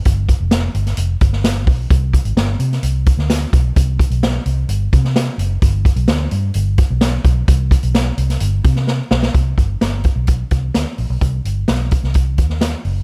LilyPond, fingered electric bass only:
\new Staff \with { instrumentName = "Fingered electric bass" } { \clef bass \time 4/4 \key c \minor \tempo 4 = 129 g,,8. f,,8. g,,8 f,,8 g,,4 b,,8 | c,8. aes,,16 g,,8 c8 c,8. d,8. b,,8 | c,8. b,,8. c,8 g,,8 c4 fis,,8 | g,,8. b,,16 r8 g,8 g,,8. b,,8. b,,8 |
c,8. b,,8. c,8 g,,8 c4 b,,8 | c,8 g,,8 g,,8. b,,8. c,8 d,16 r16 bes,,16 b,,16 | c,8 g,,8 b,,8. c,8. ees,4 fis,,8 | }